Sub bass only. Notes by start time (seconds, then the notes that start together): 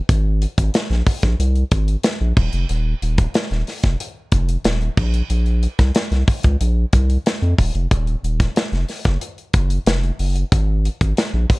0.09 G#1
0.58 G#1
0.90 A#1
1.23 A#1
1.39 C2
1.72 G#1
2.21 A#1
2.37 D#1
2.53 F1
2.70 D#1
3.02 D#1
3.51 D#1
3.84 F1
4.32 F1
4.65 D#1
4.97 A#1
5.30 A#1
5.79 C2
6.11 C2
6.44 C#2
6.61 A#1
6.93 C2
7.42 F2
7.59 D#1
7.75 F1
7.91 D#1
8.24 D#1
8.72 F1
9.05 F#1
9.54 F#1
9.86 F1
10.19 F#1
10.52 G#1
11.01 G#1
11.34 A#1